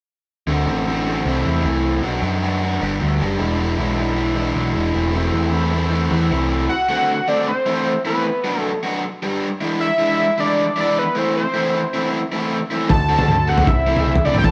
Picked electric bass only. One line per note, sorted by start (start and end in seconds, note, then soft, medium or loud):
0.47 0.66 D2 medium
0.66 1.21 A1 medium
1.25 1.44 C2 medium
1.45 1.63 E2 medium
1.64 2.01 C2 medium
2.03 2.21 B1 medium
2.22 2.77 F#2 medium
2.81 3.00 G1 medium
3.01 3.19 D2 medium
3.20 3.38 F#1 medium
3.40 3.76 E1 medium
3.78 4.52 B1 medium
4.55 4.74 B1 medium
4.75 4.93 E1 medium
4.94 5.31 E1 medium
5.33 6.07 E2 medium
6.11 6.29 E2 medium
6.31 6.67 C2 medium
12.90 13.63 D2 medium
13.67 14.21 C2 medium
14.26 14.44 C2 medium
14.44 14.51 B1 medium